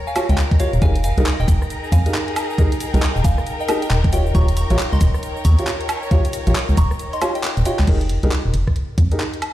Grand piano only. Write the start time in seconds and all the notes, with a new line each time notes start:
0.16 F4 G4 C#5
0.60 F4 G4 C#5
0.82 D#4 G4 G#4 A#4
1.18 D#4 G4 G#4 A#4
2.06 D#4 G4 G#4 A#4
2.58 D#4 G4 G#4 A#4
2.94 D#4 G4 G#4 A#4
3.68 D#4 G4 G#4 A#4
4.13 F4 G4 C#5
4.35 F4 G4 C#5
4.71 F4 G4 C#5
5.59 F4 G4 C#5
6.11 F4 G4 C#5
6.47 F4 G4 C#5
7.22 F4 G4 C#5
7.66 F4 G4 C#5
7.88 D#4 G4 G#4 A#4
8.23 D#4 G4 G#4 A#4
9.12 D#4 G4 G#4 A#4